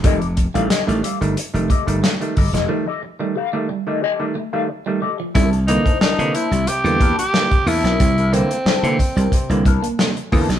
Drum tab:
HH |xxxxxxxxxxxxxxox|----------------|xxxx-xxxxxxx-xox|xxxx-xxxxxxx-xox|
SD |----o-------o--o|----------------|----o-------o--o|----o-------o--o|
BD |o-o-------o---o-|----------------|o--o------o--o--|o-----o-o-o---o-|